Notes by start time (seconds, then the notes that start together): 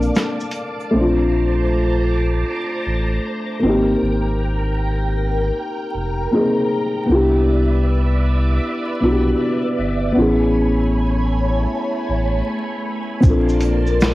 Already playing: A#1 A#3 C4 D4 A4 A#4 D5 F5 A5 D6
0.02 shaker
0.15 finger snap, snare, shaker
0.17 shaker
0.40 shaker
0.52 closed hi-hat, shaker
0.54 shaker
0.80 shaker
0.91 A#1 A3 C4 C5 A5 A#5 D6
0.97 D4 F4
2.87 A1
3.59 G#1 A#3 C4 A#4 G5 A#5
3.65 D#4 G4
4.02 G#1
5.95 F1
6.31 A#3 C4 D#4
6.35 G#4
7.06 C2 B3 D4 B4 D5 E5
7.12 E4 G4
9.00 B1 B3 D4 E4
9.05 F#4
9.12 G4
9.79 G1
10.12 B3 C#4
10.16 A1 A3 E4 C#5 G#5 B5
10.22 G#4
12.09 A1
13.20 A#1 C4 D4, kick, shaker
13.24 A#3 F4 D5 A5 C6
13.30 A4
13.49 shaker
13.60 closed hi-hat, shaker
13.63 shaker
13.86 shaker
14.00 finger snap, snare, shaker